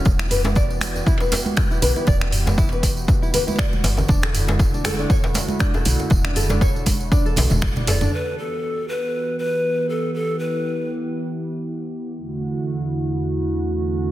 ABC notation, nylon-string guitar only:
X:1
M:4/4
L:1/16
Q:"Swing 16ths" 1/4=119
K:Em
V:1 name="Nylon-string guitar"
z E B E d z3 E B z3 E B E | d z3 E B z3 E B E d z3 | D A z3 D A D ^c z3 D A z2 | z D A D ^c z3 D A z3 D A D |
z16 | z16 | z16 |]